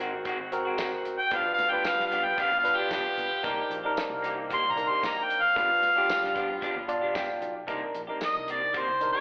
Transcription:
Already playing: G#1 D#3 G#3 C4 F#4 A#4
0.00 G#3 C4 F#4
0.13 muted clean electric guitar stroke
0.25 D#3 G#3 C4 F#4, kick, closed hi-hat
0.39 G#1, muted clean electric guitar stroke
0.52 C4 F#4 A#4, muted clean electric guitar stroke, closed hi-hat
0.65 G#3 C4 F#4
0.77 D#3 G#3 C4 F#4, kick, snare, closed hi-hat, tambourine
0.92 muted clean electric guitar stroke
1.04 muted clean electric guitar stroke, closed hi-hat
1.19 G5
1.31 G1 F3 G3 B3 D4 F4 G4 B4, kick, closed hi-hat
1.36 F5
1.45 muted clean electric guitar stroke
1.54 F5, muted clean electric guitar stroke
1.58 D2, closed hi-hat
1.71 B3 D4 F4 G4 B4 G5
1.84 muted clean electric guitar stroke, snare, closed hi-hat, tambourine
1.89 F5
1.98 G2, snare
2.07 F3 B3 F5
2.12 D4 G4, closed hi-hat
2.24 G5, muted clean electric guitar stroke
2.37 F3 B3 D4 G4, kick, closed hi-hat
2.42 F5
2.51 G1, muted clean electric guitar stroke
2.59 F5
2.63 D4 F4 B4, muted clean electric guitar stroke, closed hi-hat
2.76 D4 G4
2.81 B3
2.90 F1 F3 B3 D4 G4, kick, snare, closed hi-hat, tambourine
3.05 muted clean electric guitar stroke, muted fingered electric bass stroke
3.17 G1, muted clean electric guitar stroke, closed hi-hat
3.32 muted fingered electric bass stroke
3.43 C2 A#3 C4 D4 D#4 G4 A#4, kick, closed hi-hat
3.58 muted clean electric guitar stroke
3.70 A#1, muted clean electric guitar stroke, closed hi-hat
3.84 D4 D#4 G4 A#4
3.96 muted clean electric guitar stroke, muted fingered electric bass stroke, snare, closed hi-hat, tambourine
4.10 C2
4.22 A#3 D#4 G4, closed hi-hat
4.37 muted clean electric guitar stroke
4.50 A#3 D#4 G4, kick, closed hi-hat
4.54 C6
4.63 C2, muted clean electric guitar stroke
4.72 A#5
4.76 D4 D#4 A#4, muted clean electric guitar stroke, closed hi-hat
4.89 D#4 G4 C6
5.01 A#3 D#4 G4, kick, snare, closed hi-hat, tambourine
5.07 A#5
5.16 muted clean electric guitar stroke
5.23 G5
5.29 muted clean electric guitar stroke, closed hi-hat
5.42 F5
5.55 G1 F3 G3 B3 D4 F4 G4 B4, kick, closed hi-hat
5.69 muted clean electric guitar stroke
5.82 D2, muted clean electric guitar stroke, closed hi-hat
5.95 B3 D4 F4 G4
6.09 muted clean electric guitar stroke, snare, closed hi-hat, tambourine
6.23 G2, snare
6.35 F3 B3 D4 G4, kick, closed hi-hat
6.49 muted clean electric guitar stroke
6.61 F3 B3 D4 G4, kick, closed hi-hat
6.76 G1, muted clean electric guitar stroke
6.88 D4 F4 D5, muted clean electric guitar stroke, closed hi-hat
7.01 B3 D4 G4
7.14 G1 F3 B3 D4 G4 G5, kick, snare, closed hi-hat, tambourine
7.28 muted clean electric guitar stroke
7.41 B1, muted clean electric guitar stroke, closed hi-hat
7.67 C2 D#3 A#3 C4 D4 D#4 G4 A#4, kick, closed hi-hat
7.82 muted clean electric guitar stroke
7.94 A#1, muted clean electric guitar stroke, closed hi-hat
8.07 A#3 C4 D4 D#4 G4 A#4
8.21 muted clean electric guitar stroke, muted fingered electric bass stroke, snare, closed hi-hat, tambourine
8.26 D#5
8.35 C2
8.47 D#3 A#3 C4 G4, closed hi-hat
8.52 D5
8.61 muted clean electric guitar stroke
8.73 D#3 A#3 C4 G4, kick, closed hi-hat
8.79 C5
8.88 C2, muted clean electric guitar stroke
9.00 D4 D#4 A#4, muted clean electric guitar stroke, closed hi-hat
9.12 C4 G4 D5

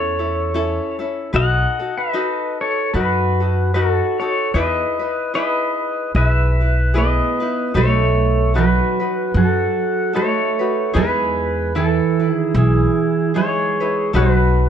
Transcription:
Already playing: E2 C#4 E4 A4 C#5
0.19 C#4 E4 A4
0.54 C#4 E4 A4
0.99 C#4 E4 A4
1.33 B1 D#4 F#4 A4 B4 F#5
1.37 D#5
1.79 D#4 F#4 A4
1.98 B4 D#5
2.13 D#4 F#4 A4 B4
2.61 A4 C#5
2.94 F#2 D#4 F#4 A4 B4
3.40 D#4 F#4 A4
3.74 D#4 F#4 A4 A#4 B4
3.92 A4
4.20 D#4 F#4 A4 C#5
4.54 E2 D#4 E4 G#4 B4 D#5
4.99 D#4 E4 B4
5.34 D#4 E4 G#4 B4 D#5
6.15 B1 E4 G#4 B4 D#5
6.27 E5
6.61 E4 B4
6.94 B3 E4 G#4 B4
6.98 D#5
7.40 D#4 E4 B4
7.74 B1 A3 D#4 F#4 A4 B4 C#5
8.54 F#3 D#4 F#4 A4 B4
9.00 D#4 F#4 B4
9.34 F#2 F#3 F#4 A4
10.13 A3 D#4 F#4 A4 B4 C#5
10.59 D#4 F#4 B4
10.94 E2 G#3 D#4 E4 G#4 B4
10.98 B4
11.75 E3 E4 A4 B4
12.20 E4 B4
12.28 D#3
12.33 G#4
12.54 B1 E3 E4 G#4
13.34 G#3 D#4 E4 G#4 B4 C#5
13.80 D#4 E4 B4
14.13 B1 F#3 D#4 F#4 A4 B4
14.18 B4

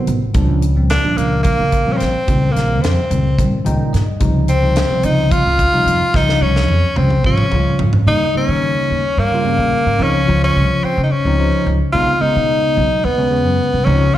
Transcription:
Already playing: C3 D#3 F#3 B3
0.07 A1, closed hi-hat
0.34 C#2 A#2 F3 G3 D4, kick, closed hi-hat
0.62 closed hi-hat
0.76 A#2 F3 G3 C4
0.90 D4, snare, closed hi-hat
1.04 A#2 F3 G3 D4, muted upright bass stroke
1.17 C#2 A#3, closed hi-hat
1.43 A#3, kick, closed hi-hat
1.60 C#2
1.72 kick, closed hi-hat
1.86 A#2 F3 G3 C4, muted upright bass stroke
1.93 C#4
1.97 C4, closed hi-hat
2.01 A#1, snare
2.27 C#2 A#2 D#3 G3 C4, kick, closed hi-hat
2.52 A#1 A#3
2.56 snare, closed hi-hat
2.81 F2 C4, snare, closed hi-hat
3.10 C#2 A#2 D#3 G3 C4, closed hi-hat
3.38 G2 A#2 D#3 G3 C4, kick, closed hi-hat
3.64 C#2 A#2 D#3 G3 D#4 G5, closed hi-hat
3.93 G2 D#5, snare, closed hi-hat
4.20 C#2 C3 F3 G3 D#4, kick, closed hi-hat
4.48 C4, closed hi-hat
4.61 C3 F3 G3 D#4
4.76 snare, closed hi-hat
4.90 C3 F3 G3 C4, muted upright bass stroke
5.03 C#2 D#4, closed hi-hat
5.31 F4, kick, closed hi-hat
5.46 C#2
5.59 kick, closed hi-hat
5.72 C3 F3 G3 D#4, muted upright bass stroke
5.86 F2, closed hi-hat
6.14 C#2 C#3 F3 G3 D#4, kick, snare
6.29 snare
6.41 C2 C#4
6.56 snare
6.68 F2, high tom
6.96 C#2 C3 F3 G3 C4 C#4, mid tom
7.10 mid tom
7.24 G#1 C3 F3 G3 C#4 F4, kick
7.38 mid tom
7.52 C#2 C#3 F3 G3 F4, mid tom
7.79 G#1, floor tom
7.93 floor tom
8.07 D#2 C#3 G3 A#3 D#4
8.34 C#3 G3 A#3 C#4 D#4, muted upright bass stroke
8.48 D#3
8.90 D#2
9.17 G2 A#3
9.32 C#3 G3 A#3 F4
9.44 C#3 G3 A#3 C#4
9.58 A#1
9.86 G#2
9.99 C#2 C#3 F3 C4 C#4 D#4
10.25 C#2 C#3 F3 F4 C5
10.44 C#4
10.56 C2
10.83 C4, muted upright bass stroke
10.97 C#3
11.03 D#4
11.11 C#4, muted upright bass stroke
11.25 C#2 C#3 F3 C4 D#4
11.38 C#3 F3 D#4 C5
11.66 C#2
11.93 B1 C#3 G#3 B3 D#4 F4
12.20 C#3 G#3 B3 D#4, muted upright bass stroke
12.36 B2
12.77 B1
13.04 D#2 B3
13.18 C#3 G#3 B3 C#4
13.31 C#3 G#3 B3 C#4
13.45 F#2
13.74 C2
13.85 C#2 C#3 F3 C4 C#4 D#4
14.13 C#2 C#3 F3 C4 F4

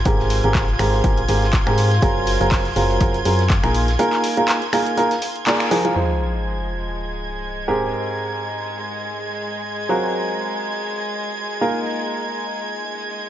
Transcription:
Already playing: F4 G#6
0.05 G#1 G#2 C4 G4 G#4 A#4, kick, closed hi-hat
0.19 snare
0.30 snare, closed hi-hat, open hi-hat
0.44 G#1 G#2 C4 G4 G#4 A#4, closed hi-hat
0.55 kick, snare, clap, closed hi-hat
0.68 closed hi-hat
0.79 G#1 G#2 C4 G4 G#4 A#4, finger snap, closed hi-hat, open hi-hat
1.04 G#1 G#2 C4 G4 G#4 A#4, kick, closed hi-hat
1.18 closed hi-hat
1.28 G#1 G#2 C4 G4 G#4 A#4, closed hi-hat, open hi-hat
1.42 snare, closed hi-hat
1.53 kick, snare, clap, closed hi-hat
1.67 G#2 C4 G4 G#4 A#4, finger snap
1.78 closed hi-hat, open hi-hat
1.91 snare, closed hi-hat
2.02 F#1 F#3 C4 F4 G#4 A#4, kick, closed hi-hat
2.27 snare, closed hi-hat, open hi-hat
2.41 F#1 F#3 C4 F4 G#4 A#4, closed hi-hat
2.52 kick, snare, clap, closed hi-hat, open hi-hat
2.65 closed hi-hat
2.76 F#1 F#3 C4 F4 G#4 A#4, closed hi-hat, open hi-hat
2.90 closed hi-hat
3.00 F#1 F#3 C4 F4 G#4 A#4, kick, closed hi-hat
3.14 closed hi-hat
3.25 F#2 F#3 C4 F4 G#4 A#4, closed hi-hat, open hi-hat
3.39 snare, closed hi-hat
3.50 kick, snare, clap, closed hi-hat
3.63 A#1 A#3 D#4 F4 G#4 A#4, finger snap, closed hi-hat
3.74 closed hi-hat, open hi-hat
3.88 snare, closed hi-hat
3.99 A#3 D#4 F4 G#4 A#4, closed hi-hat
4.12 snare, clap, closed hi-hat
4.24 snare, closed hi-hat, open hi-hat
4.37 A#3 D#4 F4 G#4 A#4, closed hi-hat
4.48 snare, clap, closed hi-hat
4.62 closed hi-hat
4.73 A#3 D#4 F4 G#4 A#4, finger snap, closed hi-hat, open hi-hat
4.86 closed hi-hat
4.97 A#3 D#4 F4 G#4 A#4, closed hi-hat
5.11 snare, closed hi-hat
5.22 closed hi-hat, open hi-hat
5.36 closed hi-hat
5.46 A#3 D#4 F4 G#4 D5, snare, clap, closed hi-hat
5.60 finger snap, closed hi-hat
5.71 F3 D#4 F4 G#4 A#4, open hi-hat
5.85 F3 D#4 F4 G#4 A#4, closed hi-hat
5.96 F3 G#3 D#4 F4 G#4 C5 G#6, sub drop
7.68 G#2 C4 G4 G#4 A#4
9.89 F#3 C4 F4 F#4 G#4 A#4
11.61 A#3 D#4 F4 G#4 A#4

